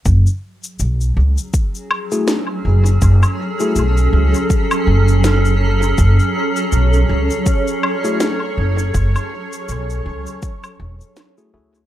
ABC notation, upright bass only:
X:1
M:4/4
L:1/8
Q:"Swing 16ths" 1/4=81
K:F#m
V:1 name="Upright bass" clef=bass
F,,, z B,,, C,, z3 F,,, | F,,, z B,,, C,, z F,,,3 | F,,, z B,,, C,, z3 F,,, | F,,, z B,,, C,, z E,,, z C,, |]